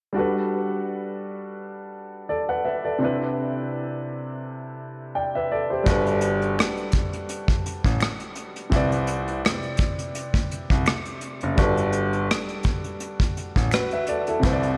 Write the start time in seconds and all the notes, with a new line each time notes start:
0.13 G3 D4 F#4
0.17 A4 B4
2.29 A4 D5
2.49 B4 F#5
2.65 B4 E5
2.85 A4 D5
2.99 C3 C4 D4
3.03 E4 B4
5.15 D5 G5
5.35 B4 E5
5.52 A4 D5
5.70 G4 C5
5.83 G1 G3 D4 F#4, kick, closed hi-hat
5.88 A4 B4
6.06 closed hi-hat
6.21 closed hi-hat
6.42 closed hi-hat
6.59 finger snap, cross-stick, closed hi-hat
6.77 closed hi-hat
6.92 kick, closed hi-hat
7.13 closed hi-hat
7.29 closed hi-hat
7.48 kick, closed hi-hat
7.66 closed hi-hat
7.84 A1, kick, closed hi-hat
8.00 finger snap, cross-stick, closed hi-hat
8.20 closed hi-hat
8.35 closed hi-hat
8.56 closed hi-hat
8.70 C2 C3 C4 E4, kick, closed hi-hat
8.75 B4 D5
8.92 closed hi-hat
9.07 closed hi-hat
9.28 closed hi-hat
9.45 finger snap, cross-stick, closed hi-hat
9.63 closed hi-hat
9.77 kick, closed hi-hat
9.99 closed hi-hat
10.15 closed hi-hat
10.34 kick, closed hi-hat
10.51 closed hi-hat
10.70 C2, kick, closed hi-hat
10.86 finger snap, cross-stick, closed hi-hat
11.05 closed hi-hat
11.21 closed hi-hat
11.41 F#1, closed hi-hat
11.56 G1 G3 D4 F#4, kick, closed hi-hat
11.60 A4 B4
11.77 closed hi-hat
11.92 closed hi-hat
12.13 closed hi-hat
12.31 finger snap, cross-stick, closed hi-hat
12.48 closed hi-hat
12.63 kick, closed hi-hat
12.84 closed hi-hat
13.00 closed hi-hat
13.20 kick, closed hi-hat
13.37 closed hi-hat
13.56 A1, kick, closed hi-hat
13.71 F#4 B4, finger snap, cross-stick, closed hi-hat
13.91 B4 E5, closed hi-hat
14.07 A4 D5, closed hi-hat
14.27 E4 A4, closed hi-hat
14.40 C3 C4 E4, kick, closed hi-hat
14.44 C2 B4 C5
14.53 D5
14.63 closed hi-hat